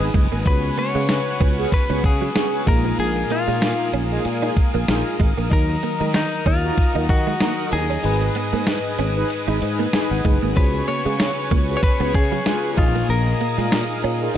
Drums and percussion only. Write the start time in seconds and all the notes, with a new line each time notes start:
0.14 kick, closed hi-hat
0.46 kick, closed hi-hat
0.77 closed hi-hat
1.09 snare, closed hi-hat, tambourine
1.40 kick, closed hi-hat
1.72 kick, closed hi-hat
2.04 kick, closed hi-hat
2.36 snare, closed hi-hat, tambourine
2.67 kick, closed hi-hat
2.99 closed hi-hat
3.30 closed hi-hat
3.62 snare, closed hi-hat, tambourine
3.93 closed hi-hat
4.25 closed hi-hat
4.57 kick, closed hi-hat
4.88 snare, closed hi-hat, tambourine
5.20 kick, open hi-hat
5.51 kick, closed hi-hat
5.83 closed hi-hat
6.14 snare, closed hi-hat, tambourine
6.46 kick, closed hi-hat
6.78 kick, closed hi-hat
7.09 kick, closed hi-hat
7.40 snare, closed hi-hat, tambourine
7.72 closed hi-hat
8.04 closed hi-hat
8.35 closed hi-hat
8.67 snare, closed hi-hat, tambourine
8.98 closed hi-hat
9.30 closed hi-hat
9.62 closed hi-hat
9.93 snare, closed hi-hat, tambourine
10.25 kick, closed hi-hat
10.56 kick, closed hi-hat
10.88 closed hi-hat
11.20 snare, closed hi-hat, tambourine
11.51 kick, closed hi-hat
11.83 kick, closed hi-hat
12.14 kick, closed hi-hat
12.46 snare, closed hi-hat, tambourine
12.78 kick, closed hi-hat
13.09 closed hi-hat
13.41 closed hi-hat
13.72 snare, closed hi-hat, tambourine
14.04 closed hi-hat